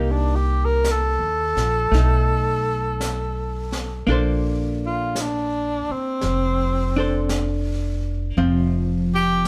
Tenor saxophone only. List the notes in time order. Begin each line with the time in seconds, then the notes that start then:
Already playing: A#3
0.11 D4
0.36 G4
0.65 A#4
0.91 A4
4.86 F4
5.21 D4
5.92 C4
9.15 G4